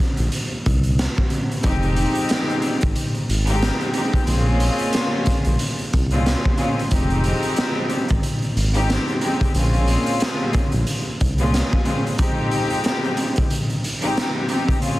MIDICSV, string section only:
0, 0, Header, 1, 2, 480
1, 0, Start_track
1, 0, Key_signature, -4, "minor"
1, 0, Tempo, 659341
1, 1193, Time_signature, 4, 2, 24, 8
1, 10916, End_track
2, 0, Start_track
2, 0, Title_t, "String section"
2, 0, Program_c, 0, 48
2, 1183, Note_on_c, 0, 41, 96
2, 1188, Note_on_c, 0, 56, 89
2, 1192, Note_on_c, 0, 60, 96
2, 1196, Note_on_c, 0, 63, 95
2, 1201, Note_on_c, 0, 67, 106
2, 2309, Note_off_c, 0, 41, 0
2, 2311, Note_off_c, 0, 56, 0
2, 2313, Note_off_c, 0, 60, 0
2, 2316, Note_off_c, 0, 63, 0
2, 2318, Note_off_c, 0, 67, 0
2, 2521, Note_on_c, 0, 41, 92
2, 2525, Note_on_c, 0, 56, 81
2, 2530, Note_on_c, 0, 60, 81
2, 2534, Note_on_c, 0, 63, 91
2, 2538, Note_on_c, 0, 67, 108
2, 2843, Note_off_c, 0, 41, 0
2, 2845, Note_off_c, 0, 56, 0
2, 2847, Note_off_c, 0, 60, 0
2, 2849, Note_off_c, 0, 63, 0
2, 2851, Note_off_c, 0, 67, 0
2, 2862, Note_on_c, 0, 41, 73
2, 2866, Note_on_c, 0, 56, 70
2, 2871, Note_on_c, 0, 60, 72
2, 2875, Note_on_c, 0, 63, 70
2, 2879, Note_on_c, 0, 67, 83
2, 3092, Note_off_c, 0, 41, 0
2, 3094, Note_off_c, 0, 56, 0
2, 3096, Note_off_c, 0, 60, 0
2, 3098, Note_off_c, 0, 63, 0
2, 3100, Note_off_c, 0, 67, 0
2, 3101, Note_on_c, 0, 46, 94
2, 3106, Note_on_c, 0, 56, 91
2, 3110, Note_on_c, 0, 60, 94
2, 3114, Note_on_c, 0, 61, 98
2, 3118, Note_on_c, 0, 65, 110
2, 4228, Note_off_c, 0, 46, 0
2, 4231, Note_off_c, 0, 56, 0
2, 4233, Note_off_c, 0, 60, 0
2, 4234, Note_off_c, 0, 61, 0
2, 4237, Note_off_c, 0, 65, 0
2, 4445, Note_on_c, 0, 46, 94
2, 4449, Note_on_c, 0, 56, 91
2, 4453, Note_on_c, 0, 60, 82
2, 4457, Note_on_c, 0, 61, 85
2, 4461, Note_on_c, 0, 65, 97
2, 4764, Note_off_c, 0, 46, 0
2, 4767, Note_off_c, 0, 56, 0
2, 4769, Note_off_c, 0, 60, 0
2, 4771, Note_off_c, 0, 61, 0
2, 4773, Note_off_c, 0, 65, 0
2, 4778, Note_on_c, 0, 46, 79
2, 4782, Note_on_c, 0, 56, 66
2, 4787, Note_on_c, 0, 60, 70
2, 4791, Note_on_c, 0, 61, 68
2, 4795, Note_on_c, 0, 65, 86
2, 5010, Note_off_c, 0, 46, 0
2, 5012, Note_off_c, 0, 56, 0
2, 5014, Note_off_c, 0, 60, 0
2, 5016, Note_off_c, 0, 61, 0
2, 5018, Note_off_c, 0, 65, 0
2, 5022, Note_on_c, 0, 41, 100
2, 5026, Note_on_c, 0, 56, 91
2, 5031, Note_on_c, 0, 60, 93
2, 5035, Note_on_c, 0, 63, 92
2, 5039, Note_on_c, 0, 67, 101
2, 6149, Note_off_c, 0, 41, 0
2, 6151, Note_off_c, 0, 56, 0
2, 6153, Note_off_c, 0, 60, 0
2, 6155, Note_off_c, 0, 63, 0
2, 6157, Note_off_c, 0, 67, 0
2, 6363, Note_on_c, 0, 41, 99
2, 6367, Note_on_c, 0, 56, 80
2, 6371, Note_on_c, 0, 60, 80
2, 6375, Note_on_c, 0, 63, 91
2, 6380, Note_on_c, 0, 67, 107
2, 6684, Note_off_c, 0, 41, 0
2, 6686, Note_off_c, 0, 56, 0
2, 6688, Note_off_c, 0, 60, 0
2, 6690, Note_off_c, 0, 63, 0
2, 6692, Note_off_c, 0, 67, 0
2, 6704, Note_on_c, 0, 41, 72
2, 6708, Note_on_c, 0, 56, 71
2, 6712, Note_on_c, 0, 60, 71
2, 6716, Note_on_c, 0, 63, 71
2, 6720, Note_on_c, 0, 67, 86
2, 6933, Note_off_c, 0, 41, 0
2, 6935, Note_off_c, 0, 56, 0
2, 6937, Note_off_c, 0, 60, 0
2, 6939, Note_off_c, 0, 63, 0
2, 6941, Note_off_c, 0, 67, 0
2, 6942, Note_on_c, 0, 46, 96
2, 6946, Note_on_c, 0, 56, 93
2, 6950, Note_on_c, 0, 60, 93
2, 6955, Note_on_c, 0, 61, 95
2, 6959, Note_on_c, 0, 65, 109
2, 8068, Note_off_c, 0, 46, 0
2, 8071, Note_off_c, 0, 56, 0
2, 8073, Note_off_c, 0, 60, 0
2, 8075, Note_off_c, 0, 61, 0
2, 8077, Note_off_c, 0, 65, 0
2, 8285, Note_on_c, 0, 46, 96
2, 8290, Note_on_c, 0, 56, 94
2, 8293, Note_on_c, 0, 60, 81
2, 8298, Note_on_c, 0, 61, 87
2, 8302, Note_on_c, 0, 65, 100
2, 8605, Note_off_c, 0, 46, 0
2, 8607, Note_off_c, 0, 56, 0
2, 8609, Note_off_c, 0, 60, 0
2, 8611, Note_off_c, 0, 61, 0
2, 8613, Note_off_c, 0, 65, 0
2, 8616, Note_on_c, 0, 46, 86
2, 8621, Note_on_c, 0, 56, 71
2, 8624, Note_on_c, 0, 60, 78
2, 8629, Note_on_c, 0, 61, 70
2, 8633, Note_on_c, 0, 65, 85
2, 8849, Note_off_c, 0, 46, 0
2, 8851, Note_off_c, 0, 56, 0
2, 8853, Note_off_c, 0, 60, 0
2, 8855, Note_off_c, 0, 61, 0
2, 8857, Note_off_c, 0, 65, 0
2, 8862, Note_on_c, 0, 41, 99
2, 8867, Note_on_c, 0, 56, 88
2, 8871, Note_on_c, 0, 60, 100
2, 8875, Note_on_c, 0, 63, 93
2, 8879, Note_on_c, 0, 67, 106
2, 9988, Note_off_c, 0, 41, 0
2, 9991, Note_off_c, 0, 56, 0
2, 9993, Note_off_c, 0, 60, 0
2, 9995, Note_off_c, 0, 63, 0
2, 9997, Note_off_c, 0, 67, 0
2, 10201, Note_on_c, 0, 41, 92
2, 10206, Note_on_c, 0, 56, 78
2, 10210, Note_on_c, 0, 60, 81
2, 10214, Note_on_c, 0, 63, 93
2, 10218, Note_on_c, 0, 67, 104
2, 10523, Note_off_c, 0, 41, 0
2, 10525, Note_off_c, 0, 56, 0
2, 10527, Note_off_c, 0, 60, 0
2, 10529, Note_off_c, 0, 63, 0
2, 10531, Note_off_c, 0, 67, 0
2, 10543, Note_on_c, 0, 41, 71
2, 10548, Note_on_c, 0, 56, 69
2, 10552, Note_on_c, 0, 60, 71
2, 10556, Note_on_c, 0, 63, 69
2, 10561, Note_on_c, 0, 67, 86
2, 10772, Note_off_c, 0, 41, 0
2, 10775, Note_off_c, 0, 56, 0
2, 10777, Note_off_c, 0, 60, 0
2, 10779, Note_off_c, 0, 63, 0
2, 10781, Note_off_c, 0, 67, 0
2, 10781, Note_on_c, 0, 46, 97
2, 10785, Note_on_c, 0, 56, 91
2, 10789, Note_on_c, 0, 60, 90
2, 10793, Note_on_c, 0, 61, 94
2, 10797, Note_on_c, 0, 65, 114
2, 10916, Note_off_c, 0, 46, 0
2, 10916, Note_off_c, 0, 56, 0
2, 10916, Note_off_c, 0, 60, 0
2, 10916, Note_off_c, 0, 61, 0
2, 10916, Note_off_c, 0, 65, 0
2, 10916, End_track
0, 0, End_of_file